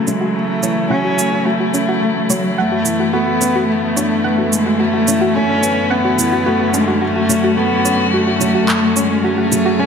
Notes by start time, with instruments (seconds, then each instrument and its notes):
Already playing: string quartet C#3 E3 F#3 A3 E4, felt piano E3 F#3 A3 C#4
0.07 felt piano F#3, cello G#3, synth arpeggio sound C#4, shaker
0.21 synth arpeggio sound F#4
0.36 cello A3
0.63 felt piano E3, synth arpeggio sound C#5, shaker
0.90 felt piano F#3, cello C#4, synth arpeggio sound F#5
1.04 synth arpeggio sound F#4
1.18 felt piano A3, shaker
1.32 synth arpeggio sound F#4
1.46 cello A3, synth arpeggio sound F#4
1.60 synth arpeggio sound F#4
1.74 felt piano C#4, synth arpeggio sound C#4, shaker
1.89 synth arpeggio sound F#4
2.02 felt piano A3
2.30 felt piano F#3, cello F#3, synth arpeggio sound C#5, shaker
2.57 string quartet F#2 D3 B3, cello A3, synth arpeggio sound F#5
2.72 synth arpeggio sound F#4
2.85 felt piano E3, shaker
3.00 synth arpeggio sound F#4
3.13 felt piano A3, cello B3, synth arpeggio sound F#4
3.27 synth arpeggio sound F#4
3.41 felt piano B3, synth arpeggio sound C#4, shaker
3.56 synth arpeggio sound F#4
3.69 cello A3
3.97 felt piano D4, synth arpeggio sound C#5, shaker
4.24 felt piano B3, synth arpeggio sound F#5
4.38 synth arpeggio sound F#4
4.52 cello G#3, felt piano A3, shaker
4.66 synth arpeggio sound F#4
4.80 cello A3, string quartet C#4, synth arpeggio sound F#4
4.93 synth arpeggio sound F#4
5.08 felt piano E3, synth arpeggio sound C#4, shaker
5.21 synth arpeggio sound F#4
5.35 felt piano A3, cello C#4
5.62 felt piano B3, synth arpeggio sound C#5, shaker
5.90 cello B3, synth arpeggio sound F#5
6.05 synth arpeggio sound F#4
6.18 felt piano E3, shaker
6.32 synth arpeggio sound F#4
6.46 felt piano A3, synth arpeggio sound F#4
6.60 synth arpeggio sound F#4
6.73 cello G#3, synth arpeggio sound C#4, felt piano D4, shaker
6.87 synth arpeggio sound F#4
7.01 string quartet F#3 F#4, cello A3, synth arpeggio sound F#4
7.16 synth arpeggio sound F#4
7.29 felt piano F#3, synth arpeggio sound C#4, shaker
7.44 synth arpeggio sound F#4
7.57 felt piano A3, cello B3
7.85 felt piano C#4, synth arpeggio sound C#5, shaker
8.13 cello A3, synth arpeggio sound F#4
8.27 synth arpeggio sound F#4
8.40 felt piano F#3, synth arpeggio sound C#4, shaker
8.55 synth arpeggio sound F#4
8.68 felt piano A3, clap
8.96 cello G#3, felt piano C#4, synth arpeggio sound C#5, shaker
9.24 cello A3, synth arpeggio sound F#4, string quartet G#4
9.38 synth arpeggio sound F#4
9.52 felt piano F#3, synth arpeggio sound C#4, shaker
9.65 synth arpeggio sound F#4
9.80 felt piano A3, cello C#4